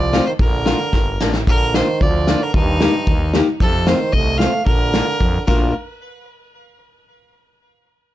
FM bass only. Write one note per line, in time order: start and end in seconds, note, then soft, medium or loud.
0.00 0.21 C2 loud
0.39 0.74 A#1 loud
0.94 1.18 G1 medium
1.20 1.45 A1 medium
1.47 1.82 A#1 medium
2.01 2.36 D2 loud
2.55 2.89 D#2 loud
3.08 3.42 D#2 loud
3.61 3.95 F2 loud
4.14 4.48 C2 medium
4.67 5.02 A#1 medium
5.21 5.39 F2 medium
5.48 5.73 A#1 loud